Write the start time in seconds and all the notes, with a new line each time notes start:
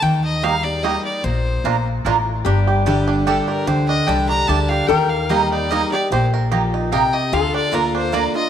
0.02 D#2 D#3 G5
0.24 D#5
0.42 G3 A#3 D#4 G4 D#5 F5 A#5
0.64 D#4 G4 D5
0.83 G3 A#3 D#4 G4 D#5 A#5
1.05 D5
1.24 A#1 A#2 C5
1.64 A#1 A#2 A#3 D4 F4 A#4 F5 A#5
2.05 A1 A2 A#3 D4 F4 A#4 F5 A#5
2.45 G1 G2 D4 G4
2.67 G4
2.86 D3 G3 A3 D4 G4 D5 A5
3.08 D4
3.27 D3 G3 A3 D4 G4 A4 D5 A5
3.48 G4 A#4
3.67 D2 D3 G4 C5
3.89 D4 D#5
4.07 C2 D3 G3 A3 D4 G4 D5 G5 A5
4.29 D4 A#5
4.47 D2 D3 G3 A3 D4 G4 D5 A5
4.69 G4 F5
4.87 D#2 D#3 G4 A#4 G5
5.09 F5
5.29 G3 A#3 D#4 G4 D#5 A#5
5.51 D#4 D5
5.70 G3 A#3 D#4 G4 A#4 D#5 A#5
5.92 D#4 G4 D5
6.11 A#1 A#2 G4 C5
6.27 A4
6.34 A#4
6.51 F3 A#3 G4 D#5 A#5
6.74 D#4
6.92 C3 A#3 G4 A#4 D#5 G5 A#5
7.13 G4 D#5
7.32 D2 D3 F4 A4 F5
7.54 D4 D5
7.72 D3 A#3 D4 F4 A#4 D5 A#5
7.95 D4 C5
8.12 D3 A#3 D4 F4 D5 A#5
8.34 D4 F4 D#5